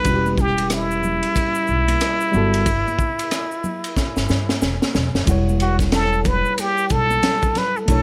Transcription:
Already playing: B4
0.04 E1 G3 C#4 E4, kick, ride, shaker
0.09 F#4
0.15 G4
0.26 high conga, shaker
0.38 G4, kick, cross-stick, shaker
0.58 ride, shaker
0.70 cross-stick, hi-hat pedal, ride, shaker
0.74 E4
0.91 shaker
1.03 high conga, low conga, shaker
1.23 ride, shaker
1.35 kick, ride, high conga, shaker
1.55 shaker
1.67 B1, shaker
1.88 ride, high conga, shaker
2.00 cross-stick, hi-hat pedal, ride, shaker
2.21 shaker
2.31 G1 G3 B3 F#4, low conga, shaker
2.37 A4
2.54 ride, shaker
2.66 kick, ride, shaker
2.88 high conga, shaker
2.99 kick, shaker
3.19 ride, shaker
3.31 cross-stick, hi-hat pedal, ride, shaker
3.52 shaker
3.64 high conga, low conga, shaker
3.84 ride, shaker
3.96 kick, snare, high conga, shaker
4.17 G1, snare, shaker
4.29 G2, snare, shaker
4.49 snare, high conga, shaker
4.62 E1, snare, shaker
4.82 snare, high conga, shaker
4.95 E1, snare, low conga, shaker
5.15 F#1, snare, shaker
5.26 E1 G3 E4 F#5, kick, ride, shaker
5.31 C#5
5.49 high conga, shaker
5.60 F#4, ride, shaker
5.79 kick, snare, ride, shaker
5.92 A4, snare, hi-hat pedal, ride, shaker
6.13 shaker
6.25 B4, kick, ride, high conga, low conga, shaker
6.45 shaker
6.58 G4, ride, high conga, shaker
6.78 shaker
6.90 B1 A4, kick, ride, shaker
7.10 high conga, shaker
7.23 snare, hi-hat pedal, ride, low conga, shaker
7.42 kick, shaker
7.55 B4, snare, ride, low conga, shaker
7.76 A4, shaker
7.86 B1 A3 D4 E4, kick, ride, shaker
7.91 C#5

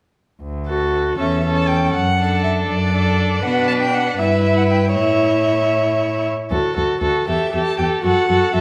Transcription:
0.42 D2
0.68 F#4 A4
1.17 E2 C#4 A4 E5
1.44 C#4 A4
1.57 A5
1.68 G5
1.94 F#2 F#5
2.19 D4 A4
2.44 E5
2.69 F#2 D5
2.92 D4 A4
3.42 B2 D4 B4 F#5
3.68 A5
3.81 G5
3.94 F#5
4.19 G2 E4 B4 E5
4.43 E5
4.57 F#5
4.69 G5
4.95 A2 E4 C#5 E5
6.51 D2 F#4 A4
6.76 D2 F#4 A4
7.01 D2 F#4 A4
7.27 E2 G4 A4 E5
7.53 E2 G4 A4
7.65 A5
7.78 E2 G4 A4 G5
8.03 F#2 F#4 A4 F#5
8.28 F#2 F#4 A4
8.53 F#2 F#4 A4 E5

